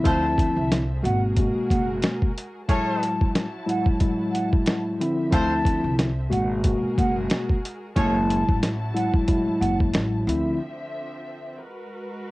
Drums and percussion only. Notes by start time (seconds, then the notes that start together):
0.05 kick, closed hi-hat
0.38 kick, closed hi-hat
0.72 snare, closed hi-hat
1.05 closed hi-hat
1.37 kick, closed hi-hat
1.70 kick, closed hi-hat
2.02 snare, closed hi-hat
2.22 kick
2.38 closed hi-hat
2.69 kick, closed hi-hat
3.03 closed hi-hat
3.21 kick
3.35 snare, closed hi-hat
3.69 closed hi-hat
3.86 kick
4.00 kick, closed hi-hat
4.35 closed hi-hat
4.53 kick
4.66 snare, closed hi-hat
5.01 closed hi-hat
5.32 kick, closed hi-hat
5.65 kick, closed hi-hat
5.99 snare, closed hi-hat
6.33 closed hi-hat
6.64 kick, closed hi-hat
6.98 kick, closed hi-hat
7.30 snare, closed hi-hat
7.50 kick
7.65 closed hi-hat
7.96 kick, closed hi-hat
8.30 closed hi-hat
8.49 kick
8.63 snare, closed hi-hat
8.96 closed hi-hat
9.13 kick
9.28 kick, closed hi-hat
9.62 closed hi-hat
9.80 kick
9.94 snare, closed hi-hat
10.29 closed hi-hat